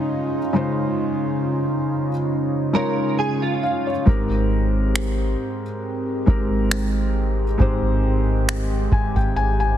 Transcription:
Already playing: felt piano C#3 G#3 D#4 F4 D#5, analog synth pad C#3 C#4 D#4 F4
0.53 felt piano C#3 G#3 D#4 F4 C5
2.73 felt piano C#3 G#3 D#4 F4 C#5, clean electric guitar A#4
3.19 clean electric guitar G#4, felt piano G#5
3.42 clean electric guitar F4
3.63 felt piano F5
3.87 felt piano C#5
4.05 808-style bass G#1, felt piano G#2 G#3 C4 G4 A#4, analog synth pad G#3 C4 G4, kick
4.96 finger snap
6.26 808-style bass G#1, felt piano G#2 G#3 C4 G4 A#4, kick
6.71 finger snap
7.58 808-style bass G#1, felt piano G#2 G#3 C4 G4 C5, kick
8.49 finger snap
8.92 808-style bass G#1, felt piano G#5, kick
9.16 808-style bass G#1, felt piano G5, kick
9.36 felt piano G#5
9.60 felt piano G#5

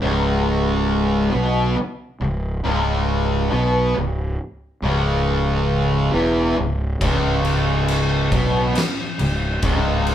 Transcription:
0.01 fingered electric bass C#1, distorted electric guitar C#2 C#3
1.31 fingered electric bass B1, distorted electric guitar B2 B3
1.77 muted distorted electric guitar stroke, muted fingered electric bass stroke
2.20 fingered electric bass C#1, distorted electric guitar C#2
2.64 fingered electric bass C#1, distorted electric guitar C#2 C#3
3.51 fingered electric bass B1, distorted electric guitar B2 B3
3.95 fingered electric bass C#1, distorted electric guitar C#2
4.82 fingered electric bass C#1, distorted electric guitar C#2 C#3
6.12 fingered electric bass E1, distorted electric guitar E2 E3
6.58 fingered electric bass C#1, distorted electric guitar C#2
7.01 fingered electric bass C#1, distorted electric guitar C#2 C#3, kick, crash
7.45 crash
7.88 crash
8.32 fingered electric bass B1, distorted electric guitar B2 B3, kick, crash
8.75 muted distorted electric guitar stroke, muted fingered electric bass stroke, snare, crash
9.19 fingered electric bass C#1, distorted electric guitar C#2, crash
9.62 fingered electric bass C#1, distorted electric guitar C#2 C#3, kick, crash
10.07 crash

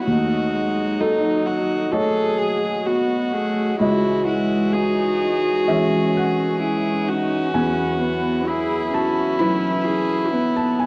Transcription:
0.06 felt piano D#2, harmonium F#3 F#4 D#5, viola A3, cello D#4, violin F#4
0.54 viola G#3
0.99 viola F#3, violin D#4, felt piano A4
1.46 violin F#4
1.92 viola F#3, felt piano A3 F#4 C#5 D#5, cello G#4, violin A4
2.38 violin G#4
2.86 viola B3, violin F#4, cello F#4
3.33 viola A3, cello G#4
3.79 felt piano C#2 D#5, harmonium E3 G#3 C#5, viola G#3, violin E4, cello F#4
4.27 cello E4, violin F#4
4.73 viola D#4, cello F#4, violin G#4
5.68 felt piano E3 G#3 C#5 E5, viola C#4
6.17 felt piano F#5
6.59 viola C#4, cello E4, violin G#4
7.06 cello D#4, violin F#4
7.54 felt piano E2 G#5, harmonium F#3 B4, viola B3, cello C#4
7.58 harmonium E4
8.01 cello B3, viola B3
8.47 violin E4, viola E4, cello G#4
8.94 viola C#4, cello F#4, felt piano A5
9.39 felt piano F#3 E4 B4 B5, cello E4
9.85 cello G#4
10.32 cello B3, viola B3
10.57 felt piano A5
10.79 felt piano G#5

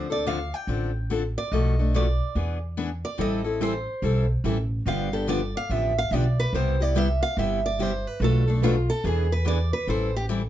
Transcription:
Already playing: upright bass D2, steel-string acoustic guitar C5
0.10 steel-string acoustic guitar C4 D4 A4 D5
0.26 steel-string acoustic guitar D3 F3 C4 D4 A4 F5
0.54 steel-string acoustic guitar G5
0.67 upright bass A1, steel-string acoustic guitar D3 F3 C4 D4 A4
1.10 steel-string acoustic guitar D3 F3 C4 D4 A4
1.38 steel-string acoustic guitar D5
1.52 upright bass B1, steel-string acoustic guitar B2 F3 A3 D4 A4 D#5
1.79 steel-string acoustic guitar A3 D4 A4
1.94 steel-string acoustic guitar B2 F3 A3 D4 A4 D5
2.35 upright bass E2, steel-string acoustic guitar E3 B3 D4 G#4
2.77 steel-string acoustic guitar E3 B3 D4 G#4
3.05 steel-string acoustic guitar D5
3.18 upright bass A1, steel-string acoustic guitar E3 G3 C4 E4 A4 D#5
3.44 steel-string acoustic guitar C4 E4 A4
3.61 steel-string acoustic guitar E3 G3 C4 E4 A4 C5
4.02 upright bass B1, steel-string acoustic guitar E3 G3 C4 E4 A4
4.44 upright bass A1, steel-string acoustic guitar E3 G3 C4 E4 A4
4.86 upright bass G1, steel-string acoustic guitar D3 F3 B3 D4 G4 F5
5.13 steel-string acoustic guitar B3 D4 G4 A4
5.27 steel-string acoustic guitar D3 F3 B3 D4 G4 D5
5.57 steel-string acoustic guitar F5
5.69 upright bass A1, steel-string acoustic guitar D3 F3 B3 D4 G4 E5
5.98 steel-string acoustic guitar F5
6.11 upright bass B1, steel-string acoustic guitar D3 F3 B3 D4 G4 D5
6.40 steel-string acoustic guitar B4
6.53 upright bass C2, steel-string acoustic guitar C3 G3 B3 E4 G4 C5
6.80 steel-string acoustic guitar B3 E4 G4 D5
6.95 steel-string acoustic guitar C3 G3 B3 E4 G4 E5
7.23 steel-string acoustic guitar F5
7.37 upright bass G1, steel-string acoustic guitar C3 G3 B3 E4 G4 E5
7.66 steel-string acoustic guitar D5
7.79 steel-string acoustic guitar C3 G3 B3 E4 G4 C5
8.07 steel-string acoustic guitar B4
8.20 upright bass B1, steel-string acoustic guitar B2 F3 A3 D4 A4 B4
8.24 steel-string acoustic guitar A4
8.48 steel-string acoustic guitar A3 D4 A4
8.63 steel-string acoustic guitar B2 F3 A3 D4 F4 A4 B4
8.90 steel-string acoustic guitar A4
9.04 upright bass E2, steel-string acoustic guitar E3 B3 D4 G#4 B4
9.32 steel-string acoustic guitar B4
9.45 steel-string acoustic guitar E3 B3 D4 G#4 B4 D5
9.73 steel-string acoustic guitar B4
9.87 upright bass A1, steel-string acoustic guitar E3 G3 C4 E4 A4 C5
10.16 steel-string acoustic guitar G4
10.29 steel-string acoustic guitar E3 G3 C4 E4 A4

